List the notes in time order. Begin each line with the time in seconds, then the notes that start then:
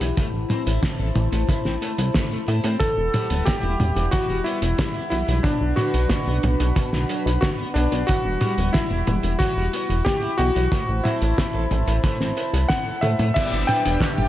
Already playing: E4 G4 F#5 B5
0.01 B1 E3, closed hi-hat
0.17 A3 C5 A5, kick, closed hi-hat
0.34 A1
0.50 C4, closed hi-hat, mid tom
0.67 A1 E4, closed hi-hat
0.83 C4, kick, snare, closed hi-hat
0.99 A1 A4
1.15 A1, closed hi-hat, mid tom
1.32 A1 A3, closed hi-hat
1.49 E4, kick, closed hi-hat
1.65 A1 C4, snare
1.82 A3, closed hi-hat
1.98 C2, closed hi-hat
2.14 A3, kick, snare, closed hi-hat
2.31 A3
2.48 A2 E4, closed hi-hat
2.64 A2 C4, closed hi-hat
2.80 E3 G3 A4 F#5 B5, kick, closed hi-hat
2.97 E1
3.14 G3, closed hi-hat, mid tom
3.30 D1 B3, closed hi-hat
3.45 G3 G4, kick, snare, closed hi-hat
3.63 E1 E4
3.80 E1, closed hi-hat, mid tom
3.96 E1 E3, closed hi-hat
4.11 E3 F#4, kick, closed hi-hat
4.29 E1 G3
4.44 B3 E4, closed hi-hat
4.62 E1, closed hi-hat
4.78 G3, kick, snare, closed hi-hat
4.95 E4
5.10 B1 E3 E4, closed hi-hat
5.28 B1 E3, closed hi-hat
5.43 B2 D4 B4, kick, closed hi-hat
5.61 B1
5.76 D3 F#4, closed hi-hat, mid tom
5.94 B1 F#3, closed hi-hat
6.10 D3, kick, snare, closed hi-hat
6.27 B1 B3
6.43 B1, closed hi-hat, mid tom
6.60 B1 B2, closed hi-hat
6.76 B2, kick, closed hi-hat
6.93 B1 D3, snare
7.09 F#3, closed hi-hat
7.26 B1, closed hi-hat
7.41 D3 F#4, kick, snare, closed hi-hat
7.59 B3
7.74 B1 B2 D4, closed hi-hat
7.92 B1 B2, closed hi-hat
8.07 E3 G3 E4 F#4, kick, closed hi-hat
8.25 E1
8.41 G3, closed hi-hat, mid tom
8.58 D1 B3, closed hi-hat
8.73 G3 E4, kick, snare, closed hi-hat
8.91 E1 E4
9.07 E1, closed hi-hat, mid tom
9.23 E1 E3, closed hi-hat
9.39 E3 F#4, kick, closed hi-hat
9.57 E1 G3
9.73 B3, closed hi-hat
9.90 E1, closed hi-hat
10.05 G3 G4, kick, snare, closed hi-hat
10.23 E4
10.38 B1 E3 F#4, closed hi-hat
10.56 B1 E3, closed hi-hat
10.72 A3 C5 A5 B5, kick, closed hi-hat
10.89 A1
11.04 C4 E4, closed hi-hat, mid tom
11.22 A1 E4, closed hi-hat
11.38 C4, kick, snare, closed hi-hat
11.55 A1 A4
11.71 A1, closed hi-hat, mid tom
11.88 A1 A3, closed hi-hat
12.04 A3, kick, closed hi-hat
12.20 A1 C4, snare
12.37 E4, closed hi-hat
12.53 C2, closed hi-hat
12.69 C4 F#5, kick, snare, closed hi-hat
12.86 A4
13.01 A2 A3 E5, closed hi-hat, high tom
13.19 A2 A3, closed hi-hat, mid tom
13.34 G3 B3 D4 E4 G4 B4 D5 E5, kick, closed hi-hat, crash
13.52 G1
13.67 B3 G5, closed hi-hat, mid tom
13.85 E1 D4, closed hi-hat
14.01 B3, kick, snare, clap, closed hi-hat
14.18 G1 G4, mid tom